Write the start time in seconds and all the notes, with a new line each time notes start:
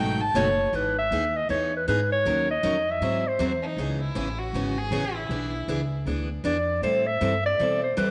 Already playing: G#1 G5
0.00 B2 F#3 A3 D#4 F#4
0.21 A5
0.34 F#1 B2 F#3 A3 D#4 F#4 C#5
0.72 G#1 E3 B3 D#4 G#4 B4
0.98 E5
1.11 D#2 E3 B3 D#4 G#4
1.36 D#5
1.49 E2 E3 B3 D#4 G#4 C#5
1.77 B4
1.88 G#2 E3 B3 D#4 G#4 B4
2.12 C#5
2.26 D#2 D#3 F#3 C#4 D#4 A#4
2.51 D#5
2.63 F2 D#3 F#3 C#4 D#4 A#4
2.91 E5
3.01 G#2 E3 F#3 C4 E4 G#4
3.28 C5
3.39 E2 E3 F#3 C4 E4 G#4
3.63 D#4
3.77 C#2 C#3 E3 B3 C#4 G#4
4.00 E4
4.15 A1 C#3 E3 B3 C#4 G#4
4.39 F#4
4.53 G#1 C#3 E3 B3 C#4 G#4
4.78 G#4
4.91 A1 C#3 E3 B3 C#4 G#4
5.15 E4
5.29 B1 E3 B3 D4 G#4
5.68 C#2 E3 B3 D4 G#4
6.06 D2 E3 B3 D4 G#4
6.44 F2 E3 B3 D4 G#4 D5
6.82 A2 E3 G3 C4 E4 A4 C5
7.06 E5
7.21 G2 E3 G3 C4 E4 A4
7.46 D5
7.59 B2 E3 G3 C4 E4 A4
7.84 C5
7.97 G2 E3 G3 C4 E4 A4 B4